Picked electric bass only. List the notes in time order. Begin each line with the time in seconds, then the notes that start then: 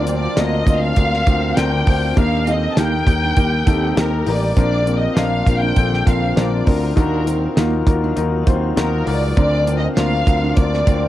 Already playing: D2
0.37 D2
0.67 D2
0.97 D2
1.27 D2
1.57 D2
1.87 D2
2.17 D#2
2.77 D#2
3.07 D#2
3.37 D#2
3.67 D#2
3.97 D#2
4.27 A1
4.57 A#1
5.17 A#1
5.47 A#1
5.77 A#1
6.07 A#1
6.37 A#1
6.67 D2
6.97 D#2
7.57 D#2
7.87 D#2
8.17 D#2
8.47 D#2
8.77 D#2
9.07 C#2
9.37 D2
9.97 D2
10.27 D2
10.57 D2
10.87 D2